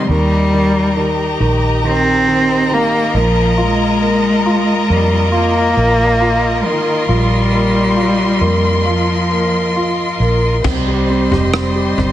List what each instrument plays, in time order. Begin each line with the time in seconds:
Already playing: grand piano C3 G3
0.04 cello G#3
0.08 fingered electric bass D#2, grand piano D#3, cello G3, string section G4 A#4 D#5 A#5
0.53 grand piano D#3
0.97 grand piano D#3
1.40 fingered electric bass A#1, grand piano D#3
1.84 grand piano D#3, cello C4
2.27 grand piano D#3
2.71 grand piano D#3, cello A#3
3.14 fingered electric bass A#1, cello F3, grand piano A#3, string section F4
3.57 cello G#3, grand piano F4
4.02 grand piano A#3
4.46 grand piano F4
4.89 fingered electric bass F2, cello G3, grand piano A#3
5.32 cello A#3, grand piano F4
5.76 fingered electric bass A#1, grand piano A#3
6.21 grand piano F4
6.64 cello D#3, grand piano A#3, string section C6
7.08 fingered electric bass A#1, cello G3, grand piano F4
7.52 grand piano A#3
7.96 grand piano F4
8.41 fingered electric bass F2, grand piano A#3
8.85 cello F3, grand piano F4
9.31 grand piano A#3
9.76 grand piano F4
10.20 fingered electric bass A#1, grand piano A#3
10.64 fingered electric bass C2, cello G3, grand piano C4, string section G4 C5 D#5 C6, kick, floor tom, crash
10.87 grand piano G4
11.10 grand piano C4
11.31 fingered electric bass F1, grand piano G4, floor tom
11.54 cello G3, grand piano C4, cross-stick
11.76 grand piano G4
11.97 fingered electric bass G1, grand piano C4, floor tom